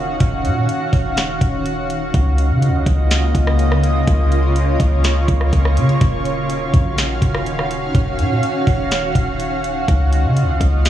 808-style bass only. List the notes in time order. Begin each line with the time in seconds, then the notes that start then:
Already playing: D#1
0.21 D#1
0.45 A#2
0.93 D#1
1.41 D#1
2.14 C#2
2.50 C#3
2.68 C#2
2.86 C#2
3.35 C#2
4.08 C#2
4.80 C#2
5.28 C#2
5.53 C#2
5.77 C#3
6.01 D#1
6.74 A#1
7.22 D#1
7.95 D#1
8.19 A#2
8.67 D#1
9.15 D#1
9.88 C#2
10.24 C#3
10.42 C#2
10.61 C#2